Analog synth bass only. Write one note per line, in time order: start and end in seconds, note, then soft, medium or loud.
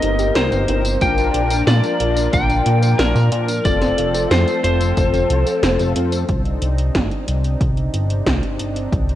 0.02 0.31 G1 loud
0.35 0.50 C2 loud
0.52 0.66 G1 loud
0.68 0.97 G1 loud
1.01 1.30 A#1 loud
1.34 1.63 A#1 medium
1.67 1.81 A#2 loud
2.00 2.29 A#1 medium
2.33 2.62 A#1 medium
2.66 2.95 A#2 loud
2.99 3.13 A#1 loud
3.15 3.30 A#2 loud
3.32 3.60 A#2 loud
3.65 3.94 F1 loud
3.98 4.26 F1 medium
4.31 4.45 F2 loud
4.64 4.92 F1 medium
4.97 5.25 F1 medium
5.30 5.44 C2 loud
5.63 5.77 F1 medium
5.79 5.94 F1 loud
5.96 6.24 F2 loud
6.29 6.57 C2 medium
6.62 6.90 C2 medium
6.95 7.09 G1 loud
7.28 7.56 C2 medium
7.61 7.89 C2 medium
7.94 8.22 G1 loud
8.27 8.41 C2 medium
8.43 8.57 G1 loud
8.60 8.88 G1 medium
8.93 9.15 C2 medium